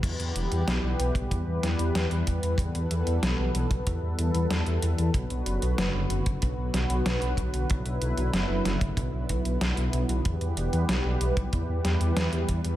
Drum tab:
CC |x---------------|----------------|----------------|----------------|
HH |xxxxx-xxx-xxxxxx|xxxxx-xxx-xxxxxx|xxxxx-xxx-xxxxxx|xxxxx-xxx-xxxxxx|
SD |----o-----o-o---|----o-------o---|----o-----o-o---|----o-o-----o---|
BD |o------oo-----o-|o------oo-------|o------oo-----o-|o------oo-o-----|

CC |----------------|
HH |xxxxx-xxx-xxxxxx|
SD |----o-----o-o---|
BD |o------oo-----o-|